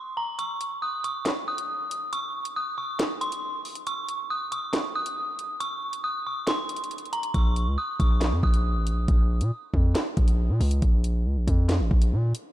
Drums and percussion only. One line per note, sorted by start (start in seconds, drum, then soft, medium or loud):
0.39 closed hi-hat medium
0.61 closed hi-hat medium
1.04 closed hi-hat medium
1.25 snare loud
1.25 clap medium
1.25 closed hi-hat medium
1.58 closed hi-hat medium
1.91 closed hi-hat medium
2.13 closed hi-hat medium
2.45 closed hi-hat medium
2.99 snare loud
2.99 clap loud
2.99 closed hi-hat medium
3.21 closed hi-hat medium
3.32 closed hi-hat medium
3.65 open hi-hat medium
3.75 closed hi-hat medium
3.87 closed hi-hat medium
4.09 closed hi-hat medium
4.52 closed hi-hat medium
4.73 snare loud
4.73 clap medium
4.73 closed hi-hat medium
5.06 closed hi-hat medium
5.39 closed hi-hat medium
5.61 closed hi-hat medium
5.93 closed hi-hat medium
6.47 snare loud
6.47 clap medium
6.47 closed hi-hat medium
6.69 closed hi-hat medium
6.76 closed hi-hat medium
6.84 closed hi-hat medium
6.91 closed hi-hat medium
6.98 closed hi-hat soft
7.05 closed hi-hat soft
7.13 closed hi-hat medium
7.23 closed hi-hat medium
7.34 kick loud
7.34 closed hi-hat medium
7.56 closed hi-hat medium
8.00 kick medium
8.00 closed hi-hat medium
8.21 snare loud
8.21 clap medium
8.21 closed hi-hat medium
8.43 kick loud
8.54 closed hi-hat medium
8.87 closed hi-hat medium
9.08 kick loud
9.08 closed hi-hat medium
9.41 closed hi-hat medium
9.74 kick medium
9.95 snare loud
9.95 clap medium
9.95 closed hi-hat medium
10.17 kick loud
10.17 closed hi-hat medium
10.28 closed hi-hat medium
10.61 open hi-hat medium
10.71 closed hi-hat medium
10.82 kick loud
10.82 closed hi-hat medium
11.04 closed hi-hat medium
11.48 kick medium
11.48 closed hi-hat medium
11.69 snare loud
11.69 clap loud
11.69 closed hi-hat medium
11.91 kick loud
12.02 closed hi-hat medium
12.35 closed hi-hat medium